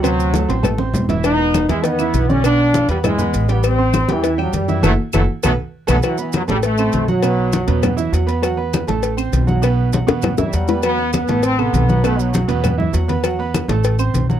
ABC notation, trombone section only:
X:1
M:4/4
L:1/8
Q:1/4=200
K:Em
V:1 name="Trombone section" clef=bass
F,4 z4 | ^D3 ^G, B,3 ^C | D3 G, ^G,3 B, | C3 E,2 F, G,2 |
[E,F,A,] z [E,F,A,] z [F,A,B,] z2 [F,A,B,] | [K:Ador] E, E, F, G, A,3 F,- | F,6 z2 | z8 |
z4 z G,3 | B,2 B,2 C B,3 | A, F, F,2 z4 | z8 |]